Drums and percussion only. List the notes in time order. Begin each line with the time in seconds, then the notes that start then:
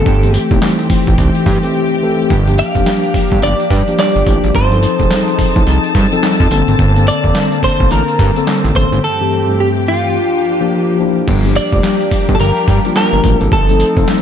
0.06 kick, closed hi-hat
0.23 closed hi-hat
0.34 closed hi-hat, tambourine
0.51 kick, closed hi-hat
0.62 snare, clap, closed hi-hat, tambourine
0.79 closed hi-hat
0.90 kick, open hi-hat, tambourine
1.07 kick, closed hi-hat
1.18 kick, closed hi-hat, tambourine
1.35 closed hi-hat
1.46 kick, snare, closed hi-hat, tambourine
1.63 closed hi-hat
2.30 kick, closed hi-hat
2.47 closed hi-hat
2.58 closed hi-hat, tambourine
2.75 kick, closed hi-hat
2.86 snare, clap, closed hi-hat, tambourine
3.04 closed hi-hat
3.14 kick, open hi-hat, tambourine
3.32 kick, closed hi-hat
3.42 closed hi-hat, tambourine
3.60 closed hi-hat
3.71 kick, snare, closed hi-hat, tambourine
3.88 closed hi-hat
3.98 snare, clap, closed hi-hat, tambourine
4.16 closed hi-hat
4.26 kick, closed hi-hat, tambourine
4.44 closed hi-hat
4.54 kick, closed hi-hat
4.72 closed hi-hat
4.83 closed hi-hat, tambourine
5.00 kick, closed hi-hat
5.11 snare, clap, closed hi-hat, tambourine
5.28 closed hi-hat
5.39 kick, open hi-hat, tambourine
5.56 kick, closed hi-hat
5.67 closed hi-hat, tambourine
5.84 closed hi-hat
5.95 kick, snare, closed hi-hat, tambourine
6.12 closed hi-hat
6.23 snare, clap, closed hi-hat, tambourine
6.40 kick, closed hi-hat
6.51 closed hi-hat, tambourine
6.68 closed hi-hat
6.79 kick, closed hi-hat
6.96 closed hi-hat
7.07 closed hi-hat, tambourine
7.24 kick, closed hi-hat
7.35 snare, clap, closed hi-hat, tambourine
7.52 closed hi-hat
7.63 kick, open hi-hat, tambourine
7.80 kick, closed hi-hat
7.91 closed hi-hat, tambourine
8.08 closed hi-hat
8.19 kick, snare, closed hi-hat, tambourine
8.36 closed hi-hat
8.47 snare, clap, closed hi-hat, tambourine
8.65 closed hi-hat
8.75 kick, closed hi-hat, tambourine
8.93 closed hi-hat
11.28 kick, closed hi-hat, crash
11.45 closed hi-hat
11.56 closed hi-hat, tambourine
11.73 kick, closed hi-hat
11.83 snare, clap, closed hi-hat, tambourine
12.01 closed hi-hat
12.11 kick, open hi-hat, tambourine
12.29 kick, closed hi-hat
12.40 closed hi-hat, tambourine
12.57 closed hi-hat
12.68 kick, snare, closed hi-hat, tambourine
12.85 closed hi-hat
12.95 snare, clap, closed hi-hat, tambourine
13.13 closed hi-hat
13.24 kick, closed hi-hat, tambourine
13.41 closed hi-hat
13.52 kick, closed hi-hat
13.69 closed hi-hat
13.80 closed hi-hat, tambourine
13.97 kick, closed hi-hat
14.08 snare, clap, closed hi-hat, tambourine